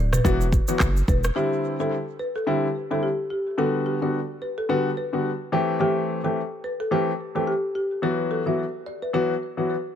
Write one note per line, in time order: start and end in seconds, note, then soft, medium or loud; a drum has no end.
0.00 0.19 D1 medium
0.00 0.11 D5 medium
0.13 0.23 B4 medium
0.13 cross-stick medium
0.13 mid tom medium
0.13 shaker loud
0.24 0.60 E1 loud
0.24 0.44 E3 loud
0.24 0.44 F#3 medium
0.24 0.44 B3 medium
0.24 0.44 F#4 loud
0.24 0.66 B4 loud
0.24 kick loud
0.24 shaker medium
0.41 shaker medium
0.52 kick loud
0.52 shaker medium
0.68 0.84 E3 medium
0.68 0.84 F#3 medium
0.68 0.84 B3 medium
0.68 0.85 F#4 medium
0.68 shaker medium
0.80 1.03 F#1 medium
0.80 kick medium
0.80 cross-stick medium
0.80 clap medium
0.80 shaker medium
0.97 shaker soft
1.08 1.30 E1 medium
1.08 1.22 B4 medium
1.08 kick medium
1.08 shaker soft
1.24 cross-stick loud
1.24 shaker medium
1.35 1.76 D3 medium
1.35 1.76 G3 medium
1.35 1.76 C4 medium
1.35 1.76 E4 medium
1.35 1.60 G4 medium
1.79 1.95 D3 medium
1.79 1.96 G3 medium
1.79 1.96 C4 medium
1.79 1.96 E4 medium
1.79 1.90 A4 medium
2.19 2.33 B4 medium
2.36 2.45 A4 medium
2.47 2.66 D3 medium
2.47 2.66 G3 medium
2.47 2.66 C4 medium
2.47 2.66 E4 medium
2.47 2.61 G4 medium
2.90 3.07 D3 medium
2.90 3.07 G3 medium
2.90 3.07 C4 medium
2.90 3.07 E4 medium
2.90 3.01 A4 medium
3.03 3.16 G4 medium
3.31 3.44 G4 medium
3.58 3.98 D3 medium
3.58 3.98 G3 medium
3.58 3.98 B3 medium
3.58 3.98 F#4 medium
3.58 3.72 A4 loud
3.86 4.00 G4 medium
4.02 4.18 D3 medium
4.02 4.18 G3 medium
4.02 4.18 B3 medium
4.02 4.18 F#4 medium
4.02 4.12 D5 medium
4.42 4.55 B4 medium
4.58 4.68 A4 medium
4.69 4.88 D3 medium
4.69 4.88 G3 medium
4.69 4.88 B3 medium
4.69 4.88 F#4 loud
4.69 4.83 B4 medium
4.97 5.11 B4 medium
5.13 5.29 D3 medium
5.13 5.29 G3 medium
5.13 5.29 B3 medium
5.13 5.29 F#4 medium
5.52 5.78 E3 medium
5.52 5.78 A3 medium
5.52 5.78 C4 medium
5.52 5.79 G4 loud
5.80 6.20 E3 medium
5.80 6.20 A3 medium
5.80 6.20 C4 medium
5.80 6.20 G4 medium
5.80 6.04 G4 loud
6.24 6.40 E3 medium
6.24 6.40 A3 medium
6.24 6.40 C4 medium
6.24 6.40 G4 medium
6.24 6.34 A4 medium
6.64 6.78 B4 medium
6.80 6.90 A4 medium
6.91 7.10 E3 medium
6.91 7.10 A3 medium
6.91 7.11 C4 medium
6.91 7.11 G4 loud
6.91 7.05 G4 medium
7.35 7.51 E3 medium
7.35 7.51 A3 medium
7.35 7.51 C4 medium
7.35 7.51 G4 medium
7.35 7.45 A4 medium
7.47 7.61 G4 medium
7.75 7.89 G4 medium
8.02 8.42 E3 medium
8.02 8.42 F#3 medium
8.02 8.43 B3 medium
8.02 8.43 F#4 loud
8.02 8.17 B4 medium
8.31 8.44 A4 medium
8.46 8.62 E3 medium
8.46 8.62 F#3 medium
8.46 8.62 B3 medium
8.46 8.62 F#4 medium
8.46 8.57 E5 medium
8.86 9.00 D5 medium
9.02 9.12 B4 medium
9.13 9.33 E3 medium
9.13 9.33 F#3 medium
9.13 9.33 B3 medium
9.13 9.33 F#4 loud
9.13 9.55 B4 loud
9.57 9.73 E3 medium
9.57 9.73 F#3 medium
9.57 9.73 B3 medium
9.57 9.74 F#4 medium